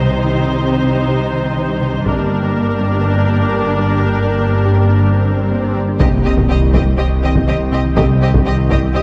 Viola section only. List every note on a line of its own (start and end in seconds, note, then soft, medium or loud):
0.00 2.03 D#4 medium
0.00 2.03 C5 medium
2.07 5.76 D4 medium
2.07 5.76 A#4 medium
6.00 6.08 C4 soft
6.25 6.33 C4 soft
6.49 6.57 C4 soft
6.73 6.81 C4 soft
6.97 7.05 C4 soft
7.23 7.31 C4 soft
7.48 7.56 C4 soft
7.72 7.80 C4 soft
7.96 8.04 C4 soft
8.22 8.30 C4 soft
8.46 8.54 C4 soft
8.70 8.78 C4 soft
8.94 9.02 C4 soft